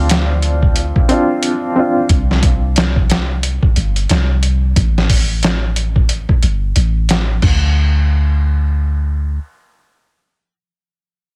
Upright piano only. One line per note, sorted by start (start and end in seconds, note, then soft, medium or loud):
0.00 1.09 C4 medium
0.00 1.11 D4 medium
0.00 1.13 F4 medium
1.09 1.72 C4 medium
1.09 1.73 D4 medium
1.13 1.75 F4 medium
1.76 2.06 C4 medium
1.76 2.07 D4 medium
1.80 2.08 F4 medium